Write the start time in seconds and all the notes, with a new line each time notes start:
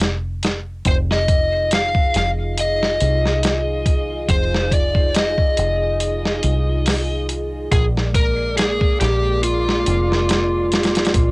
Already playing: F1
0.00 snare, closed hi-hat
0.43 snare, closed hi-hat
0.85 F1 D#4 F4 G#4 C5, kick, closed hi-hat
1.11 D#5, snare
1.28 kick, closed hi-hat
1.71 F5, snare, closed hi-hat
1.95 kick
2.14 F1 F5, snare, closed hi-hat
2.57 D#5, closed hi-hat
2.83 snare
3.00 C2, closed hi-hat
3.25 snare
3.43 snare, closed hi-hat
3.86 kick, closed hi-hat
4.29 F1 C5, kick, closed hi-hat
4.55 snare
4.72 D5, kick, closed hi-hat
4.95 kick
5.15 D#5, snare, closed hi-hat
5.38 kick
5.57 F1, closed hi-hat
6.00 closed hi-hat
6.26 snare
6.43 C2, closed hi-hat
6.86 snare, open hi-hat
7.29 closed hi-hat
7.72 A#1 G#3 A#3 G#4 D5, kick, closed hi-hat
7.97 snare
8.14 A#4, kick, closed hi-hat
8.58 G#4, snare, closed hi-hat
8.81 kick
9.01 A#1 G4, snare, closed hi-hat
9.43 F4, closed hi-hat
9.69 snare
9.86 F1, closed hi-hat
10.12 snare
10.29 snare, closed hi-hat
10.72 snare, closed hi-hat
10.83 snare, closed hi-hat
10.95 snare, closed hi-hat
11.05 snare, closed hi-hat
11.14 A#1, kick, closed hi-hat